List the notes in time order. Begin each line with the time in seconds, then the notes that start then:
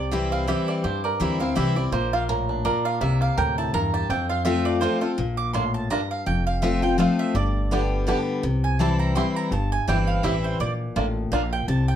Already playing: C2 C3 G3 G4 D5
0.11 E3 G3 C4 E4 G4 E5
0.32 C4 F5
0.48 E3 G3 C4 E4 G4 E5
0.68 C4 D5
0.84 G2 G4 C5
1.04 A#4 D5
1.20 D2 E3 G3 C4 E4 G4 E5
1.40 C4 E4 F5
1.55 C2 E3 G3 C4 E4 G4 E5
1.76 C4 E4 D5
1.92 A#1 A#2 A#3 C5
2.13 F4 F5
2.29 A2 A#4
2.49 D4
2.65 A#2 A#4 D5
2.85 F4 F5
3.01 C2 C3 A#3 E5
3.21 G4 F5
3.37 D2 A2 A#4 G5
3.58 E4 A5
3.73 E2 G2 A#4 A#5
3.94 G4 A5
4.10 F2 C4 G5
4.29 F4 F5
4.45 F3 A3 C4 F4 E5
4.65 F4 D5
4.81 F3 A3 C4 F4 C5
5.01 C4 F4 A4
5.18 A#1 A#2
5.37 D6
5.54 A2 A#3 D4 F4 C6
5.74 A5
5.90 G2 A#3 D4 F4 A#5
6.11 F5
6.26 F1 F2 G5
6.47 F5
6.62 F3 A3 C4 F4 E5
6.82 C4 F4 G5
6.98 F3 A3 C4 F4 F5
7.19 E5
7.35 G1 G2 D5
7.71 D3 G3 B3 D4 G4
8.07 D3 G3 B3 D4 G4
8.43 C2 C3
8.64 G#5
8.79 E3 G3 C4 E4 G4 A5
8.99 A#5
9.15 E3 G3 C4 E4 G4 C6
9.36 A#5
9.51 G1 G2 A5
9.72 G#5
9.87 G1 E3 G3 C4 E4 G4 G5
10.07 F5
10.23 A1 E3 G3 C4 E4 G4 E5
10.44 C5
10.60 A#1 A#2 D5
10.96 A1 A2 A#3 D4 F4
11.32 A#1 A#2 A#3 D4 F4 F5
11.53 G5
11.68 C2 C3 A5
11.88 G5